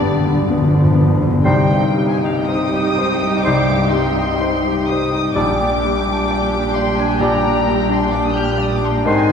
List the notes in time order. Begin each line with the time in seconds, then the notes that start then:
Already playing: G1 G2 D3 G3 D4 B4 D5 D6
0.00 B3
0.05 G2
0.11 G2
0.19 G2
0.26 G2 D3
0.34 G2
0.41 G2
0.48 G1 G2 F3 B3
0.55 G2
0.62 G2
0.69 G2
0.74 G2 D3
0.84 G2
0.92 G2 B3
1.00 G2
1.07 G2
1.15 G2
1.21 G2 D3
1.30 G2
1.44 C2 C3 G3 D#4 G4 C5 G5
1.71 G2
1.96 G3
2.09 G#5
2.18 G5
2.23 D#4
2.27 F5
2.37 G5
2.47 G3 D#4 C5 D#6
2.74 G4
2.99 C5
3.22 D#4
3.43 C2 G3 D#4 C5 G5 D6
3.69 G2
3.91 G3 C6
4.17 D#4
4.41 C5
4.65 G4
4.87 C5 D#6
5.13 D#4
5.35 A#1 A#2 G3 D4 G4 D5 G5 D6
5.60 A#2
5.85 G3
6.08 D4
6.31 D5
6.54 G4
6.74 D5 C6
6.99 D4 G#5
7.20 A#1 G3 D4 D5 G5 A#5
7.45 A#2
7.68 G3
7.89 D4
7.97 C6
8.12 D5 D6
8.25 D#6
8.35 G4 G6
8.43 F6
8.51 G6
8.58 D5 F6
8.67 D#6
8.76 D6
8.81 D4
8.87 C6
8.96 A#5
9.05 G#1 G#2 D#3 C4 D#4 G#4 C5 D#5 G#5